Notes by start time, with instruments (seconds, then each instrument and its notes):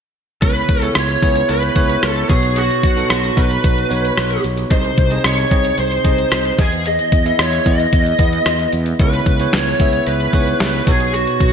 0.41 fretless electric bass C#2, tine electric piano C#3 B3 E4 G#4 C#5, lead electric guitar B4, kick, closed hi-hat
0.56 closed hi-hat
0.69 fretless electric bass C#2, kick, closed hi-hat
0.82 tine electric piano B3 E4 G#4 C#5, closed hi-hat
0.95 fretless electric bass C#2, lead electric guitar C#5, cross-stick, closed hi-hat
1.09 closed hi-hat
1.23 fretless electric bass C#2, tine electric piano B3 E4 G#4 C#5, kick, closed hi-hat
1.36 closed hi-hat
1.49 fretless electric bass C#2, lead electric guitar B4, closed hi-hat
1.63 closed hi-hat
1.75 fretless electric bass C#2, tine electric piano B3 E4 G#4 C#5, kick, closed hi-hat
1.90 closed hi-hat
2.03 fretless electric bass C#2, cross-stick, closed hi-hat
2.10 lead electric guitar A4
2.16 closed hi-hat
2.29 fretless electric bass B1, tine electric piano B2 B3 D#4 F#4 C#5, lead electric guitar G#4, kick, closed hi-hat
2.43 closed hi-hat
2.56 lead electric guitar F#4, closed hi-hat
2.70 closed hi-hat
2.83 fretless electric bass B1, kick, closed hi-hat
2.97 tine electric piano B3 D#4 F#4 A4, closed hi-hat
3.10 fretless electric bass B1, lead electric guitar F#4, cross-stick, closed hi-hat
3.24 closed hi-hat
3.36 fretless electric bass B1, tine electric piano B3 D#4 F#4 B4, lead electric guitar B4, kick, closed hi-hat
3.51 closed hi-hat
3.64 fretless electric bass B1, kick, closed hi-hat
3.78 closed hi-hat
3.89 fretless electric bass B1, tine electric piano B3 D#4 F#4 C#5, closed hi-hat
4.05 closed hi-hat
4.17 fretless electric bass B1, cross-stick, closed hi-hat
4.31 closed hi-hat
4.44 fretless electric bass B1, closed hi-hat
4.57 closed hi-hat
4.70 fretless electric bass C2, tine electric piano C3 C4 D#4 G#4 D#5, lead electric guitar C5, kick, closed hi-hat
4.84 closed hi-hat
4.98 fretless electric bass C2, kick, closed hi-hat
5.10 tine electric piano C4 D#4 G#4 D#5, closed hi-hat
5.24 fretless electric bass C2, lead electric guitar C#5, cross-stick, closed hi-hat
5.38 closed hi-hat
5.51 fretless electric bass C2, tine electric piano C4 D#4 G#4 D#5, kick, closed hi-hat
5.65 closed hi-hat
5.78 fretless electric bass C2, lead electric guitar C5, closed hi-hat
5.91 closed hi-hat
6.04 fretless electric bass C2, tine electric piano C4 D#4 G#4 D#5, kick, closed hi-hat
6.18 closed hi-hat
6.32 fretless electric bass C2, cross-stick, closed hi-hat
6.45 closed hi-hat
6.58 fretless electric bass E2, tine electric piano E3 B3 E4 G#4 D#5, lead electric guitar G#4, kick, closed hi-hat
6.72 closed hi-hat
6.86 lead electric guitar D#5, closed hi-hat
6.99 closed hi-hat
7.12 fretless electric bass E2, kick, closed hi-hat
7.25 tine electric piano B3 E4 G#4 E5, closed hi-hat
7.39 fretless electric bass E2, lead electric guitar C#5, cross-stick, closed hi-hat
7.53 closed hi-hat
7.66 fretless electric bass E2, tine electric piano B3 E4 G#4 D#5, lead electric guitar D#5, kick, closed hi-hat
7.79 closed hi-hat
7.93 fretless electric bass E2, kick, closed hi-hat
8.06 closed hi-hat
8.19 fretless electric bass E2, tine electric piano B3 E4 G#4 D#5, kick, closed hi-hat
8.33 closed hi-hat
8.46 fretless electric bass E2, cross-stick, closed hi-hat
8.59 closed hi-hat
8.72 fretless electric bass E2, closed hi-hat
8.86 closed hi-hat
8.99 fretless electric bass C#2, tine electric piano C#3 B3 E4 G#4 C#5, lead electric guitar B4, kick, closed hi-hat
9.13 closed hi-hat
9.26 fretless electric bass C#2, kick, closed hi-hat
9.40 tine electric piano B3 E4 G#4 C#5, closed hi-hat
9.53 fretless electric bass C#2, lead electric guitar C#5, snare, closed hi-hat
9.67 closed hi-hat
9.80 fretless electric bass C#2, tine electric piano B3 E4 G#4 E5, kick, closed hi-hat
9.93 closed hi-hat
10.07 fretless electric bass C#2, lead electric guitar B4, closed hi-hat
10.20 closed hi-hat
10.33 fretless electric bass C#2, tine electric piano B3 D#4 G#4 C#5, kick, closed hi-hat
10.41 tine electric piano E4
10.47 closed hi-hat
10.60 fretless electric bass C#2, snare, closed hi-hat
10.74 closed hi-hat
10.87 fretless electric bass B1, tine electric piano B2 B3 D#4 F#4 C#5, lead electric guitar G#4, kick, closed hi-hat
11.00 closed hi-hat
11.14 lead electric guitar F#4, closed hi-hat
11.27 closed hi-hat
11.40 fretless electric bass B1, kick, closed hi-hat